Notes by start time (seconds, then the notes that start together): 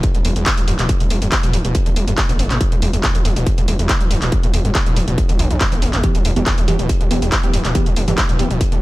0.03 D2, kick, closed hi-hat
0.15 E1 B2, closed hi-hat
0.25 E1 E2, open hi-hat
0.36 E1 E2, closed hi-hat
0.46 kick, clap, closed hi-hat
0.57 D1, closed hi-hat
0.68 D1 F#2, open hi-hat
0.79 D1 B2, clap, closed hi-hat
0.89 D2, kick, closed hi-hat
1.00 E1 B2, closed hi-hat
1.10 E1 E2, open hi-hat
1.22 E1 G2, closed hi-hat
1.32 E3, kick, clap, closed hi-hat
1.43 D1 B2, closed hi-hat
1.53 D1 E2, open hi-hat
1.65 D1 B2, closed hi-hat
1.75 D2, kick, closed hi-hat
1.86 E1 D3, closed hi-hat
1.96 E1, open hi-hat
2.07 E1 G2, closed hi-hat
2.18 kick, clap, closed hi-hat
2.29 G1 B2, closed hi-hat
2.39 G1, open hi-hat
2.50 G1 B2, clap, closed hi-hat
2.61 E2, kick, closed hi-hat
2.72 E1 B2, closed hi-hat
2.82 E1 E2, open hi-hat
2.93 E1 E2, closed hi-hat
3.04 E2, kick, clap, closed hi-hat
3.15 E1 D2, closed hi-hat
3.25 E1 F#2, open hi-hat
3.36 D1 B2, closed hi-hat
3.46 D2, kick, closed hi-hat
3.58 E1 B2, closed hi-hat
3.68 E1 E2, open hi-hat
3.79 E1 E2, closed hi-hat
3.89 kick, clap, closed hi-hat
4.01 D1, closed hi-hat
4.11 D1 F#2, open hi-hat
4.22 D1 B2, clap, closed hi-hat
4.32 D2, kick, closed hi-hat
4.43 E1 B2, closed hi-hat
4.54 E1 E2, open hi-hat
4.65 E1 G2, closed hi-hat
4.75 E3, kick, clap, closed hi-hat
4.86 D1 B2, closed hi-hat
4.96 D1 E2, open hi-hat
5.08 D1 B2, closed hi-hat
5.18 D2, kick, closed hi-hat
5.29 E1 D3, closed hi-hat
5.39 B1 E2, open hi-hat
5.50 B1 E2, closed hi-hat
5.61 G2, kick, clap, closed hi-hat
5.72 G1 E3, closed hi-hat
5.82 G1 D2, open hi-hat
5.93 E1 G1, clap, closed hi-hat
6.04 E2 E3 B3 G4, kick, closed hi-hat
6.15 E1 B2, closed hi-hat
6.25 E1 E2, open hi-hat
6.36 E1 E2 E3 B3 G4, closed hi-hat
6.46 E2, kick, clap, closed hi-hat
6.58 E1 D2, closed hi-hat
6.68 E1 F#2 E3 B3 G4, open hi-hat
6.79 D1 B2, closed hi-hat
6.89 D2, kick, closed hi-hat
7.01 E1 B2, closed hi-hat
7.11 E1 E2 E3 B3 G4, open hi-hat
7.22 E1 E2, closed hi-hat
7.32 kick, clap, closed hi-hat
7.43 D1 E3 B3 G4, closed hi-hat
7.54 D1 F#2, open hi-hat
7.65 D1 B2, clap, closed hi-hat
7.75 D2 E3 B3 G4, kick, closed hi-hat
7.86 E1 B2, closed hi-hat
7.96 E1 E2, open hi-hat
8.08 E1 G2 E3 B3 G4, closed hi-hat
8.18 E3, kick, clap, closed hi-hat
8.29 D1 B2, closed hi-hat
8.39 D1 E2 E3 B3 G4, open hi-hat
8.50 D1 B2, closed hi-hat
8.60 D2, kick, closed hi-hat
8.72 E1 D3, closed hi-hat